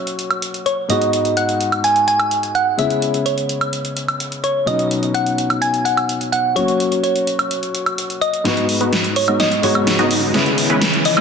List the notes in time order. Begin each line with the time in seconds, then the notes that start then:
Already playing: F#3 A#3 C#4 F#4 C#5
0.07 closed hi-hat
0.19 closed hi-hat
0.31 closed hi-hat, high woodblock
0.42 closed hi-hat
0.54 closed hi-hat
0.66 C#5, closed hi-hat
0.89 G#2 G#3 B3 D#4 F#4 D#5, closed hi-hat
1.01 closed hi-hat
1.13 closed hi-hat
1.25 closed hi-hat
1.37 F#5, closed hi-hat
1.49 closed hi-hat
1.61 closed hi-hat
1.72 closed hi-hat, high woodblock
1.84 G#5, closed hi-hat
1.96 closed hi-hat
2.08 G#5, closed hi-hat
2.20 closed hi-hat, high woodblock
2.31 closed hi-hat
2.43 closed hi-hat
2.55 F#5, closed hi-hat
2.77 C#3 G#3 B3 C#4 E4 E5, closed hi-hat
2.90 closed hi-hat
3.02 closed hi-hat
3.14 closed hi-hat
3.26 C#5, closed hi-hat
3.38 closed hi-hat
3.49 closed hi-hat
3.61 closed hi-hat, high woodblock
3.73 closed hi-hat
3.85 closed hi-hat
3.97 closed hi-hat
4.08 closed hi-hat, high woodblock
4.20 closed hi-hat
4.32 closed hi-hat
4.44 C#5, closed hi-hat
4.66 B2 F#3 B3 C#4 D#4 D#5, closed hi-hat
4.79 closed hi-hat
4.91 closed hi-hat
5.03 closed hi-hat
5.14 F#5, closed hi-hat
5.26 closed hi-hat
5.38 closed hi-hat
5.50 closed hi-hat, high woodblock
5.62 G#5, closed hi-hat
5.74 closed hi-hat
5.85 F#5, closed hi-hat
5.97 closed hi-hat, high woodblock
6.09 closed hi-hat
6.21 closed hi-hat
6.32 F#5, closed hi-hat
6.55 F#3 A#3 C#4 F#4 C#5, closed hi-hat
6.68 closed hi-hat
6.80 closed hi-hat
6.92 closed hi-hat
7.03 C#5, closed hi-hat
7.16 closed hi-hat
7.27 closed hi-hat
7.39 closed hi-hat, high woodblock
7.51 closed hi-hat
7.63 closed hi-hat
7.75 closed hi-hat
7.86 closed hi-hat, high woodblock
7.98 closed hi-hat
8.10 closed hi-hat
8.21 D#5, closed hi-hat
8.34 closed hi-hat
8.44 G#2 G#3 B3 D#4 F#4 B4, snare, closed hi-hat, riser
8.57 closed hi-hat
8.69 open hi-hat
8.81 G#3 B3 D#4 F#4 B4, closed hi-hat
8.93 snare, closed hi-hat
9.04 closed hi-hat
9.16 C#5, open hi-hat
9.28 G#3 B3 D#4 F#4 D#5, closed hi-hat, high woodblock
9.40 D#5, snare, closed hi-hat
9.52 closed hi-hat
9.62 G#2 G#3 B3 D#4 F#4 C#5, open hi-hat
9.75 closed hi-hat, high woodblock
9.87 snare, closed hi-hat
9.99 G#3 B3 D#4 F#4 D#5, closed hi-hat
10.11 open hi-hat
10.33 C#3 G#3 B3 C#4 E4 B4, snare, closed hi-hat
10.46 closed hi-hat
10.58 open hi-hat
10.70 G#3 B3 C#4 E4 B4, closed hi-hat
10.81 snare, closed hi-hat
10.93 closed hi-hat
11.05 D#5, open hi-hat
11.17 G#3 B3 C#4 E4 D#5, closed hi-hat, high woodblock